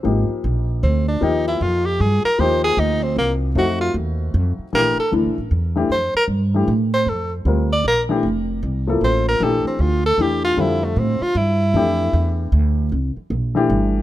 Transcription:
0.03 0.28 G#1 medium
0.03 1.12 F3 medium
0.03 1.13 A#3 medium
0.03 1.13 D#4 medium
0.03 1.13 G4 medium
0.29 muted upright bass stroke soft
0.44 0.82 A#1 medium
0.83 1.21 D2 medium
0.83 1.06 C4 medium
1.08 1.25 D4 medium
1.21 1.60 D#2 medium
1.21 2.30 F3 medium
1.21 2.30 A#3 medium
1.21 2.30 D#4 medium
1.21 1.47 D#4 medium
1.21 2.31 G4 medium
1.48 1.64 E4 medium
1.61 1.99 F2 medium
1.61 1.87 F4 medium
1.86 2.02 G4 medium
2.00 2.23 G2 medium
2.00 2.24 G#4 medium
2.25 2.41 A#4 loud
2.25 muted upright bass stroke soft
2.38 2.77 D#2 medium
2.38 3.47 F3 medium
2.38 3.47 A#3 medium
2.38 3.48 D#4 medium
2.38 3.48 G4 medium
2.38 2.63 C5 loud
2.64 2.81 G#4 loud
2.77 3.15 D2 medium
2.77 3.05 D#4 medium
3.03 3.17 C4 medium
3.16 3.54 C2 medium
3.16 3.33 A#3 medium
3.55 3.93 F2 medium
3.55 4.64 A3 medium
3.55 4.65 C4 medium
3.55 4.65 D#4 medium
3.55 4.65 F#4 medium
3.55 3.80 F#4 medium
3.81 3.94 F4 loud
3.94 4.32 D#2 medium
4.34 4.57 F2 medium
4.59 muted upright bass stroke soft
4.73 4.96 A#1 medium
4.73 4.95 E3 medium
4.73 4.96 A3 medium
4.73 4.96 D4 medium
4.73 4.96 G4 medium
4.73 4.97 A#4 loud
4.98 5.12 A4 medium
4.98 muted upright bass stroke soft
5.12 5.27 D2 medium
5.12 5.34 E3 medium
5.12 5.34 A3 medium
5.12 5.35 D4 medium
5.12 5.35 E4 medium
5.25 5.37 A#1 soft
5.38 5.50 A1 medium
5.51 5.89 E2 medium
5.76 5.88 E3 medium
5.76 5.89 A3 medium
5.76 5.89 D4 medium
5.76 5.89 G4 medium
5.90 6.13 F2 medium
5.90 6.14 C5 loud
6.15 6.25 A#4 loud
6.15 muted upright bass stroke soft
6.28 6.66 G2 medium
6.54 6.67 E3 medium
6.54 6.67 A3 medium
6.54 6.67 D4 medium
6.54 6.68 G4 medium
6.68 7.06 A2 medium
6.94 7.11 C5 loud
7.06 7.44 F2 medium
7.06 7.33 A4 medium
7.45 7.83 D2 medium
7.45 7.68 G3 medium
7.45 7.69 C4 medium
7.45 7.69 F4 medium
7.45 7.69 A#4 medium
7.73 7.85 D5 loud
7.84 8.22 A#1 medium
7.84 8.02 A#4 medium
8.09 8.22 E3 medium
8.09 8.22 A3 medium
8.09 8.23 D4 medium
8.09 8.23 G4 medium
8.23 8.61 F1 medium
8.63 9.01 C2 medium
8.87 9.38 F3 medium
8.87 9.38 A#3 medium
8.87 9.38 E4 medium
8.87 9.39 A4 medium
9.01 9.39 A1 medium
9.01 9.26 C5 medium
9.29 9.45 A#4 loud
9.40 9.64 A#1 medium
9.40 10.00 E3 medium
9.40 10.00 A3 medium
9.40 10.00 D4 medium
9.40 10.01 G4 medium
9.40 9.67 A4 medium
9.65 9.83 C4 medium
9.65 muted upright bass stroke soft
9.79 10.17 D2 medium
9.79 10.06 F4 medium
10.06 10.23 A4 loud
10.18 10.56 E2 medium
10.18 10.78 E3 medium
10.18 10.78 A3 medium
10.18 10.79 D4 medium
10.18 10.79 G4 medium
10.18 10.44 G4 medium
10.45 10.61 F4 loud
10.57 10.95 F2 medium
10.57 11.66 D3 medium
10.57 11.66 G3 medium
10.57 11.67 C4 medium
10.57 10.86 E4 medium
10.57 11.67 F4 medium
10.84 11.00 A3 medium
10.96 11.20 A2 medium
10.96 11.24 C4 medium
11.21 11.39 F4 loud
11.21 muted upright bass stroke soft
11.35 11.73 G2 loud
11.35 12.54 E4 loud
11.74 12.12 F2 medium
11.74 12.83 E3 medium
11.74 12.84 A3 medium
11.74 12.84 D4 medium
11.74 12.84 G4 medium
12.13 12.51 E2 loud
12.52 12.90 D2 loud
12.92 13.15 C2 medium
13.17 muted upright bass stroke soft
13.30 13.68 A#1 medium
13.55 14.02 E3 medium
13.55 14.02 A3 medium
13.55 14.02 D4 medium
13.55 14.02 G4 medium
13.70 14.02 G1 medium

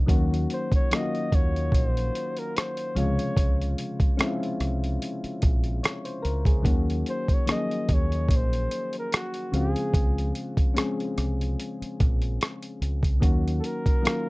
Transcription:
0.06 0.45 D#2 loud
0.06 0.63 D#3 medium
0.06 0.63 F#3 medium
0.06 0.64 A#3 medium
0.06 0.64 C#4 medium
0.06 0.64 F#4 medium
0.06 kick loud
0.06 closed hi-hat medium
0.34 closed hi-hat soft
0.50 0.72 C5 medium
0.50 closed hi-hat medium
0.72 0.96 C#5 medium
0.72 kick medium
0.72 closed hi-hat soft
0.91 2.01 D#3 medium
0.91 2.02 F#3 medium
0.91 2.02 A#3 medium
0.91 2.02 C#4 medium
0.91 0.99 F4 medium
0.91 1.37 D#5 loud
0.91 cross-stick loud
0.91 closed hi-hat medium
1.01 2.06 F#4 medium
1.15 closed hi-hat soft
1.32 1.69 D#2 medium
1.32 1.76 C#5 medium
1.32 kick medium
1.32 closed hi-hat medium
1.56 closed hi-hat soft
1.72 2.09 A#1 medium
1.72 1.87 C#5 medium
1.72 kick medium
1.72 closed hi-hat medium
1.87 2.40 C5 medium
1.97 closed hi-hat soft
2.15 closed hi-hat medium
2.37 2.58 A#4 medium
2.37 closed hi-hat soft
2.57 2.98 C5 medium
2.57 cross-stick loud
2.57 closed hi-hat medium
2.77 closed hi-hat soft
2.95 3.17 C#2 medium
2.95 3.97 C3 medium
2.95 3.96 C#3 medium
2.95 3.96 F3 medium
2.95 3.97 G#3 medium
2.95 3.97 F4 loud
2.95 3.78 C#5 medium
2.95 closed hi-hat medium
3.19 closed hi-hat medium
3.37 3.74 C#2 loud
3.37 kick loud
3.37 closed hi-hat medium
3.62 closed hi-hat soft
3.78 closed hi-hat medium
4.00 kick medium
4.00 closed hi-hat soft
4.17 5.29 F3 medium
4.17 5.29 G#3 medium
4.17 5.29 C4 medium
4.17 5.29 C#4 medium
4.17 4.27 E4 medium
4.17 cross-stick loud
4.17 closed hi-hat medium
4.27 5.33 F4 medium
4.43 closed hi-hat soft
4.60 4.97 C2 medium
4.60 cross-stick soft
4.60 closed hi-hat medium
4.84 closed hi-hat soft
5.02 closed hi-hat medium
5.24 muted fingered electric bass stroke soft
5.24 closed hi-hat soft
5.42 5.80 A#1 medium
5.42 kick loud
5.42 closed hi-hat medium
5.64 closed hi-hat soft
5.83 6.05 C#5 medium
5.83 cross-stick loud
5.83 closed hi-hat medium
6.05 6.23 C5 medium
6.05 closed hi-hat soft
6.22 6.62 C#2 medium
6.22 6.45 A#4 medium
6.22 closed hi-hat medium
6.45 6.86 G#4 medium
6.45 kick medium
6.45 closed hi-hat medium
6.62 7.02 D#2 loud
6.62 7.20 D#3 medium
6.62 7.20 F#3 medium
6.62 7.21 A#3 medium
6.62 7.21 C#4 medium
6.62 7.21 F#4 medium
6.62 kick loud
6.62 closed hi-hat medium
6.90 closed hi-hat soft
7.06 7.35 C5 loud
7.06 closed hi-hat medium
7.28 kick medium
7.28 closed hi-hat soft
7.34 7.49 C#5 medium
7.46 8.57 D#3 medium
7.46 7.54 F3 medium
7.46 8.58 A#3 medium
7.46 8.59 C#4 medium
7.46 8.59 G#4 medium
7.46 cross-stick loud
7.46 closed hi-hat medium
7.52 8.61 F#3 medium
7.52 7.95 D#5 medium
7.71 closed hi-hat soft
7.89 8.26 D#2 medium
7.89 kick medium
7.89 closed hi-hat medium
7.93 8.38 C#5 medium
8.12 closed hi-hat soft
8.28 8.66 A#1 medium
8.28 kick medium
8.28 closed hi-hat medium
8.36 8.97 C5 medium
8.53 closed hi-hat soft
8.71 closed hi-hat medium
8.93 closed hi-hat soft
8.98 9.13 A#4 medium
9.12 9.59 F#4 medium
9.12 cross-stick loud
9.12 closed hi-hat medium
9.34 closed hi-hat soft
9.52 9.74 C#2 medium
9.52 10.53 C#3 medium
9.52 10.54 F3 medium
9.52 10.54 G#3 medium
9.52 10.54 C4 medium
9.52 10.55 F4 medium
9.52 closed hi-hat medium
9.58 10.38 G#4 medium
9.76 closed hi-hat medium
9.94 10.31 C#2 loud
9.94 kick loud
9.94 closed hi-hat medium
10.18 closed hi-hat soft
10.35 closed hi-hat medium
10.57 kick medium
10.57 closed hi-hat soft
10.74 11.86 F3 medium
10.74 11.87 G#3 medium
10.74 11.87 C4 medium
10.74 11.86 C#4 medium
10.74 11.87 G#4 medium
10.74 closed hi-hat medium
10.78 cross-stick loud
11.00 closed hi-hat soft
11.18 11.55 C2 medium
11.18 cross-stick soft
11.18 closed hi-hat medium
11.41 closed hi-hat soft
11.60 closed hi-hat medium
11.82 muted fingered electric bass stroke soft
11.82 closed hi-hat soft
12.00 12.37 A#1 medium
12.00 kick loud
12.00 closed hi-hat medium
12.22 closed hi-hat soft
12.41 cross-stick loud
12.41 closed hi-hat medium
12.63 closed hi-hat soft
12.82 13.19 C#2 medium
12.82 closed hi-hat medium
13.03 kick medium
13.03 closed hi-hat medium
13.20 13.60 D#2 loud
13.20 13.77 D#3 medium
13.20 13.78 F#3 medium
13.20 13.78 A#3 medium
13.20 13.78 C#4 medium
13.20 13.79 F#4 medium
13.20 kick loud
13.20 closed hi-hat medium
13.48 closed hi-hat soft
13.60 13.68 A4 medium
13.64 14.29 A#4 loud
13.64 closed hi-hat medium
13.86 kick medium
13.86 closed hi-hat soft
14.02 14.29 D#3 medium
14.02 14.29 F#3 medium
14.02 14.29 A#3 medium
14.02 14.29 C#4 medium
14.02 14.29 F4 medium
14.02 closed hi-hat medium
14.07 cross-stick loud

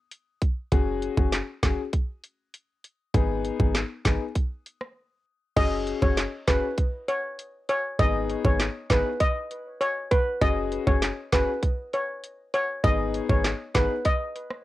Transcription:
0.11 closed hi-hat medium
0.42 kick loud
0.42 closed hi-hat medium
0.72 1.08 F#1 loud
0.72 1.14 C#4 medium
0.72 1.14 F#4 medium
0.72 1.14 G#4 loud
0.72 kick loud
0.72 closed hi-hat medium
1.02 closed hi-hat medium
1.17 1.42 F#1 loud
1.17 1.35 C#4 medium
1.17 1.35 F#4 medium
1.17 1.35 G#4 medium
1.17 kick medium
1.32 snare loud
1.32 clap medium
1.32 closed hi-hat medium
1.63 1.75 F#1 medium
1.63 1.80 C#4 medium
1.63 1.80 F#4 medium
1.63 1.80 G#4 medium
1.63 kick loud
1.63 snare loud
1.63 clap medium
1.63 closed hi-hat medium
1.93 kick medium
1.93 closed hi-hat medium
2.24 closed hi-hat medium
2.54 closed hi-hat medium
2.84 closed hi-hat medium
3.14 3.51 G#1 loud
3.14 3.56 B3 medium
3.14 3.56 D#4 medium
3.14 3.56 G#4 loud
3.14 kick loud
3.14 closed hi-hat medium
3.45 closed hi-hat medium
3.60 3.84 G#1 medium
3.60 3.77 B3 medium
3.60 3.77 D#4 medium
3.60 3.77 G#4 medium
3.60 kick medium
3.75 snare loud
3.75 clap medium
3.75 closed hi-hat medium
4.05 4.17 G#1 medium
4.05 4.22 B3 medium
4.05 4.22 D#4 medium
4.05 4.23 G#4 medium
4.05 kick loud
4.05 snare loud
4.05 clap medium
4.05 closed hi-hat medium
4.35 kick medium
4.35 closed hi-hat medium
4.66 closed hi-hat medium
4.81 cross-stick medium
5.56 5.93 F#1 loud
5.56 5.98 C#4 medium
5.56 5.98 F#4 medium
5.56 5.99 G#4 loud
5.56 5.68 D#5 loud
5.56 kick loud
5.56 closed hi-hat medium
5.56 crash loud
5.87 closed hi-hat medium
6.02 6.26 F#1 loud
6.02 6.19 C#4 medium
6.02 6.20 F#4 medium
6.02 6.20 G#4 medium
6.02 6.14 C#5 medium
6.02 kick medium
6.17 snare loud
6.17 clap medium
6.17 closed hi-hat medium
6.47 6.60 F#1 medium
6.47 6.65 C#4 medium
6.47 6.65 F#4 medium
6.47 6.65 G#4 medium
6.47 6.59 B4 medium
6.47 kick loud
6.47 snare loud
6.47 clap loud
6.47 closed hi-hat medium
6.78 kick loud
6.78 closed hi-hat medium
7.08 7.20 C#5 medium
7.08 closed hi-hat medium
7.39 closed hi-hat medium
7.69 7.81 C#5 medium
7.69 closed hi-hat medium
7.99 8.36 G#1 loud
7.99 8.41 B3 medium
7.99 8.41 D#4 medium
7.99 8.41 G#4 loud
7.99 8.11 D#5 loud
7.99 kick loud
7.99 closed hi-hat medium
8.30 closed hi-hat medium
8.45 8.69 G#1 loud
8.45 8.62 B3 medium
8.45 8.62 D#4 medium
8.45 8.62 G#4 medium
8.45 8.56 C#5 medium
8.45 kick loud
8.60 snare loud
8.60 clap medium
8.60 closed hi-hat medium
8.90 9.02 G#1 medium
8.90 9.07 B3 medium
8.90 9.08 D#4 medium
8.90 9.08 G#4 medium
8.90 9.02 B4 medium
8.90 kick loud
8.90 snare loud
8.90 clap loud
8.90 closed hi-hat medium
9.20 9.63 D#5 medium
9.20 kick loud
9.20 closed hi-hat medium
9.51 closed hi-hat medium
9.81 9.92 C#5 medium
9.81 closed hi-hat medium
10.11 10.23 B4 medium
10.11 kick loud
10.11 closed hi-hat medium
10.41 10.78 F#1 loud
10.41 10.83 C#4 medium
10.41 10.83 F#4 medium
10.41 10.84 G#4 loud
10.41 10.53 D#5 loud
10.41 kick loud
10.41 closed hi-hat medium
10.72 closed hi-hat medium
10.87 11.11 F#1 loud
10.87 11.05 C#4 medium
10.87 11.05 F#4 medium
10.87 11.05 G#4 medium
10.87 10.99 C#5 medium
10.87 kick loud
11.02 snare loud
11.02 clap medium
11.02 closed hi-hat medium
11.32 11.45 F#1 medium
11.32 11.50 C#4 medium
11.32 11.50 F#4 medium
11.32 11.50 G#4 medium
11.32 11.44 B4 medium
11.32 kick loud
11.32 snare loud
11.32 clap loud
11.32 closed hi-hat medium
11.63 kick loud
11.63 closed hi-hat medium
11.93 12.05 C#5 medium
11.93 closed hi-hat medium
12.24 closed hi-hat medium
12.54 12.65 C#5 medium
12.54 closed hi-hat medium
12.84 13.20 G#1 loud
12.84 13.26 B3 medium
12.84 13.26 D#4 medium
12.84 13.26 G#4 loud
12.84 12.95 D#5 loud
12.84 kick loud
12.84 closed hi-hat medium
13.14 closed hi-hat medium
13.29 13.54 G#1 loud
13.29 13.47 B3 medium
13.29 13.47 D#4 medium
13.29 13.47 G#4 medium
13.29 13.41 C#5 medium
13.29 kick loud
13.44 snare loud
13.44 clap loud
13.44 closed hi-hat medium
13.74 13.87 G#1 medium
13.74 13.92 B3 medium
13.74 13.92 D#4 medium
13.74 13.92 G#4 medium
13.74 13.86 B4 medium
13.74 kick loud
13.74 snare loud
13.74 clap loud
13.74 closed hi-hat medium
14.05 14.48 D#5 medium
14.05 kick medium
14.05 closed hi-hat medium
14.36 closed hi-hat medium
14.50 cross-stick medium

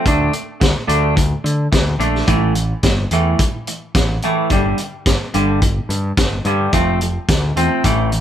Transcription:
0.06 0.28 D2 medium
0.06 0.32 D3 medium
0.06 0.32 A3 medium
0.06 0.33 D4 medium
0.06 kick medium
0.06 closed hi-hat medium
0.33 0.58 D3 medium
0.33 0.58 A3 medium
0.33 closed hi-hat medium
0.61 0.72 D2 medium
0.61 0.86 D3 medium
0.61 0.86 A3 medium
0.61 kick loud
0.61 snare loud
0.61 closed hi-hat medium
0.88 1.33 D2 medium
0.88 1.14 D3 medium
0.88 1.15 A3 medium
0.88 1.15 D4 medium
0.88 closed hi-hat medium
1.16 1.41 D3 medium
1.16 1.41 A3 medium
1.16 kick medium
1.16 closed hi-hat medium
1.44 1.66 D3 medium
1.44 1.69 D3 medium
1.44 1.69 A3 medium
1.44 closed hi-hat medium
1.72 1.94 D2 medium
1.72 1.97 D3 medium
1.72 1.97 A3 medium
1.72 kick loud
1.72 snare loud
1.72 closed hi-hat medium
1.98 2.21 A#1 medium
1.98 2.26 D3 medium
1.98 2.26 A3 medium
1.98 2.26 D4 medium
1.98 closed hi-hat medium
2.15 snare soft
2.27 2.72 A1 medium
2.27 2.54 A2 medium
2.27 2.54 E3 medium
2.27 2.54 A3 medium
2.27 kick loud
2.27 closed hi-hat medium
2.55 2.80 A2 medium
2.55 2.81 E3 medium
2.55 closed hi-hat medium
2.83 3.05 G1 loud
2.83 3.09 A2 medium
2.83 3.09 E3 medium
2.83 kick medium
2.83 snare loud
2.83 closed hi-hat medium
3.11 3.33 E2 medium
3.11 3.38 A2 medium
3.11 3.38 E3 medium
3.11 3.38 A3 medium
3.11 closed hi-hat medium
3.39 3.65 A2 medium
3.39 3.65 E3 medium
3.39 kick loud
3.39 closed hi-hat medium
3.67 3.92 A2 medium
3.67 3.92 E3 medium
3.67 closed hi-hat medium
3.95 4.17 A1 medium
3.95 4.20 A2 medium
3.95 4.20 E3 medium
3.95 kick loud
3.95 snare loud
3.95 closed hi-hat medium
4.22 4.49 A2 medium
4.22 4.49 E3 loud
4.22 4.50 A3 loud
4.22 closed hi-hat soft
4.50 4.72 G1 medium
4.50 4.77 G2 medium
4.50 4.77 D3 medium
4.50 4.77 G3 medium
4.50 kick medium
4.50 closed hi-hat medium
4.78 5.04 G2 medium
4.78 5.04 D3 medium
4.78 closed hi-hat medium
5.06 5.17 G1 medium
5.06 5.31 G2 medium
5.06 5.31 D3 medium
5.06 kick loud
5.06 snare loud
5.06 closed hi-hat medium
5.34 5.78 G1 medium
5.34 5.60 G2 medium
5.34 5.60 D3 medium
5.34 5.60 G3 medium
5.34 closed hi-hat medium
5.62 5.86 G2 medium
5.62 5.87 D3 medium
5.62 kick loud
5.62 closed hi-hat medium
5.89 6.11 G2 medium
5.89 6.15 G2 medium
5.89 6.15 D3 medium
5.89 closed hi-hat medium
6.17 6.39 G1 medium
6.17 6.42 G2 medium
6.17 6.43 D3 medium
6.17 kick loud
6.17 snare loud
6.17 closed hi-hat medium
6.45 6.67 G2 medium
6.45 6.71 G2 medium
6.45 6.71 D3 medium
6.45 6.72 G3 medium
6.45 closed hi-hat soft
6.73 7.17 F1 medium
6.73 6.99 F3 medium
6.73 6.99 A3 medium
6.73 7.00 C4 medium
6.73 kick medium
6.73 closed hi-hat medium
7.01 7.27 F3 medium
7.01 7.27 A3 medium
7.01 closed hi-hat medium
7.28 7.51 D2 medium
7.28 7.54 F3 medium
7.28 7.54 A3 medium
7.28 kick loud
7.28 snare loud
7.28 closed hi-hat medium
7.56 7.67 E2 medium
7.56 7.83 F3 medium
7.56 7.83 A3 medium
7.56 7.83 C4 loud
7.56 closed hi-hat medium
7.84 8.21 A1 medium
7.84 8.10 A2 medium
7.84 8.11 E3 medium
7.84 8.11 A3 medium
7.84 kick medium
7.84 closed hi-hat medium
8.12 8.21 A2 medium
8.12 8.21 E3 medium
8.12 closed hi-hat medium

